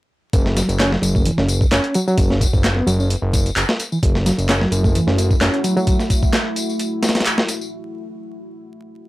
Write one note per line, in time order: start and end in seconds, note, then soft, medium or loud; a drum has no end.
0.33 0.62 F#1 loud
0.33 kick loud
0.33 closed hi-hat medium
0.33 tambourine soft
0.46 snare medium
0.57 0.67 F#3 medium
0.57 snare soft
0.57 closed hi-hat medium
0.57 tambourine medium
0.69 0.97 F#1 medium
0.69 closed hi-hat soft
0.69 tambourine soft
0.80 0.91 C#4 loud
0.80 snare loud
0.80 clap loud
0.80 closed hi-hat medium
0.80 tambourine soft
0.92 1.14 F#3 medium
0.92 snare medium
1.02 1.31 F#1 loud
1.02 closed hi-hat medium
1.02 tambourine medium
1.15 1.20 A3 medium
1.15 kick loud
1.15 tambourine soft
1.25 1.38 E3 medium
1.25 closed hi-hat medium
1.25 tambourine soft
1.38 1.66 F#1 loud
1.38 1.47 C#4 medium
1.38 snare medium
1.49 closed hi-hat medium
1.49 tambourine medium
1.61 kick loud
1.61 tambourine soft
1.72 1.80 F#1 medium
1.72 1.94 C#4 loud
1.72 snare loud
1.72 clap loud
1.72 closed hi-hat medium
1.72 tambourine soft
1.84 closed hi-hat soft
1.94 2.05 F#3 loud
1.94 closed hi-hat medium
1.94 tambourine medium
2.07 2.29 F#3 loud
2.07 tambourine soft
2.18 2.47 F#1 loud
2.18 kick loud
2.18 closed hi-hat medium
2.18 tambourine soft
2.30 2.39 C#4 medium
2.30 snare soft
2.41 kick medium
2.41 closed hi-hat medium
2.41 tambourine medium
2.53 2.81 F#1 medium
2.53 kick medium
2.53 tambourine soft
2.64 snare loud
2.64 clap loud
2.64 closed hi-hat medium
2.64 tambourine soft
2.76 2.85 B3 loud
2.87 3.16 F#1 loud
2.87 2.97 F#3 medium
2.87 closed hi-hat medium
2.87 tambourine medium
3.00 3.08 C#4 medium
3.00 tambourine soft
3.10 closed hi-hat medium
3.10 tambourine soft
3.22 3.50 F#1 loud
3.33 kick medium
3.33 closed hi-hat medium
3.33 tambourine medium
3.46 closed hi-hat soft
3.46 tambourine soft
3.56 3.64 F#1 medium
3.56 clap loud
3.56 closed hi-hat medium
3.56 tambourine soft
3.69 snare loud
3.80 closed hi-hat medium
3.80 tambourine medium
3.92 3.97 E3 medium
3.92 tambourine soft
4.03 4.31 F#1 loud
4.03 7.69 A3 medium
4.03 7.69 E4 medium
4.03 7.69 F#4 medium
4.03 kick loud
4.03 closed hi-hat loud
4.03 tambourine soft
4.15 snare medium
4.26 4.36 F#3 medium
4.26 snare soft
4.26 closed hi-hat medium
4.26 tambourine medium
4.38 4.66 F#1 medium
4.38 closed hi-hat soft
4.38 tambourine soft
4.49 4.60 C#4 loud
4.49 snare loud
4.49 clap loud
4.49 closed hi-hat medium
4.49 tambourine soft
4.61 4.83 F#3 medium
4.61 snare medium
4.72 5.00 F#1 loud
4.72 closed hi-hat medium
4.72 tambourine medium
4.84 4.89 A3 medium
4.84 kick loud
4.84 tambourine soft
4.95 5.07 E3 medium
4.95 closed hi-hat medium
4.95 tambourine soft
5.07 5.35 F#1 loud
5.07 5.16 C#4 medium
5.07 snare medium
5.18 closed hi-hat medium
5.18 tambourine medium
5.31 kick medium
5.31 tambourine soft
5.41 5.49 F#1 medium
5.41 5.63 C#4 loud
5.41 snare loud
5.41 clap loud
5.41 closed hi-hat medium
5.41 tambourine soft
5.54 closed hi-hat soft
5.64 5.74 F#3 loud
5.64 closed hi-hat medium
5.64 tambourine medium
5.76 5.98 F#3 loud
5.76 tambourine soft
5.87 kick loud
5.87 closed hi-hat medium
5.87 tambourine soft
5.99 snare soft
5.99 tambourine soft
6.10 kick medium
6.10 closed hi-hat medium
6.10 tambourine medium
6.23 kick loud
6.23 tambourine soft
6.33 snare loud
6.33 clap loud
6.33 closed hi-hat medium
6.33 tambourine soft
6.56 closed hi-hat medium
6.56 tambourine medium
6.69 tambourine soft
6.79 closed hi-hat medium
6.79 tambourine soft
7.03 snare medium
7.03 closed hi-hat medium
7.03 tambourine medium
7.09 snare medium
7.09 closed hi-hat medium
7.15 snare medium
7.15 closed hi-hat medium
7.15 tambourine soft
7.21 snare medium
7.21 closed hi-hat medium
7.26 clap loud
7.26 closed hi-hat medium
7.26 tambourine soft
7.38 snare loud
7.48 closed hi-hat medium
7.48 tambourine medium
7.61 tambourine soft